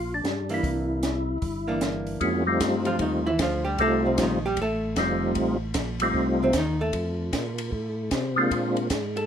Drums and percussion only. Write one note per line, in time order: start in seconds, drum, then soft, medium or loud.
0.25 snare medium
0.25 closed hi-hat soft
0.49 open hi-hat soft
0.63 kick soft
0.63 open hi-hat soft
1.03 snare medium
1.03 closed hi-hat soft
1.42 kick soft
1.42 open hi-hat soft
1.81 snare medium
1.81 closed hi-hat soft
2.07 open hi-hat soft
2.21 kick soft
2.21 ride soft
2.60 kick soft
2.60 snare medium
2.60 hi-hat pedal medium
2.60 ride medium
2.85 ride soft
2.99 kick soft
2.99 ride medium
3.39 kick soft
3.39 snare medium
3.39 hi-hat pedal soft
3.39 ride medium
3.78 kick soft
3.78 ride soft
4.18 kick soft
4.18 snare medium
4.18 hi-hat pedal medium
4.18 ride medium
4.57 kick soft
4.57 ride medium
4.96 kick soft
4.96 snare medium
4.96 hi-hat pedal medium
4.96 ride medium
5.35 kick soft
5.35 ride medium
5.74 kick soft
5.74 snare medium
5.74 hi-hat pedal medium
5.74 ride medium
6.00 ride medium
6.14 kick soft
6.53 kick soft
6.53 snare medium
6.53 hi-hat pedal medium
6.53 ride medium
6.93 kick soft
6.93 ride medium
7.33 kick soft
7.33 snare medium
7.33 hi-hat pedal medium
7.33 ride medium
7.58 ride medium
7.72 kick soft
8.11 kick soft
8.11 snare medium
8.11 hi-hat pedal medium
8.11 ride medium
8.51 kick soft
8.51 ride soft
8.77 ride soft
8.90 kick soft
8.90 snare medium
8.90 hi-hat pedal medium
8.90 ride medium
9.17 ride soft